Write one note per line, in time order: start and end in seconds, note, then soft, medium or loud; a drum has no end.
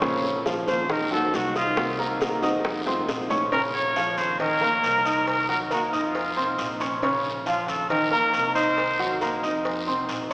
0.00 0.61 A#1 loud
0.00 0.38 C#3 medium
0.00 0.44 F3 medium
0.00 0.44 A#3 medium
0.00 0.38 C#4 medium
0.00 0.45 C#4 medium
0.00 0.45 F4 medium
0.00 0.45 C5 medium
0.00 high bongo medium
0.00 long guiro medium
0.24 high bongo soft
0.45 0.81 F3 medium
0.45 0.66 A#3 medium
0.45 0.67 C#4 medium
0.45 0.82 F4 medium
0.45 0.67 F4 medium
0.45 0.66 C5 medium
0.45 0.82 F5 medium
0.45 high bongo medium
0.45 short guiro medium
0.67 1.30 D#2 loud
0.67 0.89 A#3 medium
0.67 0.89 C#4 medium
0.67 0.89 F4 medium
0.67 0.88 C5 medium
0.67 0.93 C5 loud
0.67 high bongo soft
0.67 short guiro medium
0.89 1.07 D#3 medium
0.89 1.07 D#4 medium
0.89 1.12 A#4 medium
0.89 1.08 D#5 medium
0.89 muted nylon-string guitar stroke medium
0.89 high bongo medium
0.89 long guiro medium
1.11 1.47 F#3 medium
1.11 1.32 A#3 medium
1.11 1.33 D#4 medium
1.11 1.32 F#4 medium
1.11 1.47 F#4 medium
1.11 1.37 A4 loud
1.11 1.48 F#5 medium
1.33 2.37 C2 loud
1.33 1.76 D#3 medium
1.33 1.76 A#3 medium
1.33 1.77 D#4 medium
1.33 1.77 F#4 medium
1.33 1.56 F#4 medium
1.33 high bongo soft
1.33 low bongo medium
1.33 short guiro medium
1.55 1.91 D#4 medium
1.55 1.97 F4 loud
1.55 1.91 D#5 medium
1.55 1.92 D#6 medium
1.55 high bongo soft
1.55 short guiro medium
1.76 2.20 C3 medium
1.76 2.19 D#3 medium
1.76 2.20 A#3 medium
1.76 2.21 C4 medium
1.76 2.21 F#4 medium
1.76 high bongo medium
1.76 long guiro medium
1.98 2.35 A#3 medium
1.98 2.35 A#4 medium
1.98 2.35 A#5 medium
1.98 high bongo soft
2.20 2.42 D#3 medium
2.20 2.42 A#3 medium
2.20 2.42 C4 medium
2.20 2.41 F#4 medium
2.20 high bongo medium
2.20 short guiro medium
2.42 3.05 F2 loud
2.42 2.63 D#3 medium
2.42 2.64 A#3 medium
2.42 2.64 C4 medium
2.42 2.79 D#4 medium
2.42 2.63 F#4 medium
2.42 2.79 D#5 medium
2.42 2.79 D#6 medium
2.42 high bongo soft
2.42 short guiro medium
2.64 muted nylon-string guitar stroke medium
2.64 high bongo medium
2.64 long guiro medium
2.86 3.06 D#3 medium
2.86 3.07 A3 medium
2.86 3.22 C4 medium
2.86 3.08 C4 medium
2.86 3.07 F4 medium
2.86 3.23 C5 medium
2.86 3.23 C6 medium
2.86 high bongo loud
3.08 4.12 A#1 loud
3.08 3.51 D#3 medium
3.08 3.51 A3 medium
3.08 3.52 C4 medium
3.08 3.52 F4 medium
3.08 high bongo loud
3.08 short guiro medium
3.30 3.48 C#4 medium
3.30 3.48 C#5 medium
3.30 3.48 C#6 medium
3.30 low bongo loud
3.30 short guiro medium
3.52 3.88 C#3 medium
3.52 3.88 C#4 medium
3.52 3.62 A#4 loud
3.52 3.88 C#5 medium
3.52 cowbell loud
3.52 long guiro medium
3.74 4.19 C#5 loud
3.96 4.32 F3 medium
3.96 4.32 F4 medium
3.96 4.32 F5 medium
3.96 cowbell medium
3.96 short guiro medium
4.18 4.80 D#2 medium
4.18 4.39 C5 loud
4.18 cowbell medium
4.18 short guiro medium
4.40 4.58 D#3 medium
4.40 4.58 D#4 medium
4.40 5.24 A#4 loud
4.40 4.58 D#5 medium
4.40 cowbell loud
4.40 long guiro medium
4.61 4.97 A#3 medium
4.61 4.97 A#4 medium
4.61 4.98 A#5 medium
4.83 5.87 C2 loud
4.83 cowbell medium
4.83 short guiro medium
5.05 5.41 D#4 medium
5.05 5.41 D#5 medium
5.05 5.41 D#6 medium
5.05 short guiro medium
5.27 5.48 A#4 loud
5.27 cowbell loud
5.27 long guiro medium
5.49 5.67 F#3 medium
5.49 5.67 F#4 medium
5.49 5.59 A#4 medium
5.49 5.67 F#5 medium
5.71 5.89 A#3 medium
5.71 5.81 F#4 medium
5.71 5.89 A#4 medium
5.71 5.89 A#5 medium
5.71 cowbell medium
5.71 short guiro medium
5.93 6.34 F2 medium
5.93 6.29 D#4 medium
5.93 6.77 F4 medium
5.93 6.29 D#5 medium
5.93 6.29 D#6 medium
5.93 short guiro medium
6.15 cowbell loud
6.15 long guiro medium
6.37 6.57 C2 medium
6.37 6.73 C4 medium
6.37 6.73 C5 medium
6.37 6.73 C6 medium
6.58 7.62 A#1 loud
6.58 cowbell medium
6.58 short guiro medium
6.80 6.98 C#4 medium
6.80 6.98 C#5 medium
6.80 6.99 C#6 medium
6.80 cowbell medium
6.80 short guiro medium
7.02 7.38 C#3 medium
7.02 7.38 C#4 medium
7.02 7.39 C#5 medium
7.02 cowbell loud
7.02 long guiro medium
7.46 7.82 F3 medium
7.46 7.82 F4 medium
7.46 7.69 F4 medium
7.46 7.82 F5 medium
7.46 cowbell medium
7.46 short guiro medium
7.68 8.30 D#2 medium
7.68 7.89 A4 medium
7.68 cowbell medium
7.68 short guiro medium
7.89 8.08 D#3 medium
7.89 8.08 D#4 medium
7.89 8.10 A#4 loud
7.89 8.08 D#5 medium
7.89 cowbell loud
7.89 long guiro medium
8.11 8.47 A#3 medium
8.11 8.52 A#4 loud
8.11 8.48 A#4 medium
8.11 8.48 A#5 medium
8.34 9.37 C2 loud
8.34 cowbell medium
8.34 short guiro medium
8.55 8.91 D#4 medium
8.55 9.39 C5 loud
8.55 8.92 D#5 medium
8.55 8.92 D#6 medium
8.55 short guiro medium
8.78 cowbell loud
8.78 long guiro medium
8.99 9.17 F#3 medium
8.99 9.17 F#4 medium
8.99 9.18 F#5 medium
9.21 9.39 A#3 medium
9.21 9.39 A#4 medium
9.21 9.39 A#5 medium
9.21 cowbell medium
9.21 short guiro medium
9.43 9.84 F2 medium
9.43 9.79 D#4 medium
9.43 9.79 D#5 medium
9.43 9.79 D#6 medium
9.43 short guiro medium
9.65 cowbell loud
9.65 long guiro medium
9.87 10.07 C2 medium
9.87 10.23 C4 medium
9.87 10.23 C5 medium
9.87 10.23 C6 medium
10.09 10.33 A#1 loud
10.09 cowbell medium
10.09 short guiro medium
10.30 10.33 C#4 medium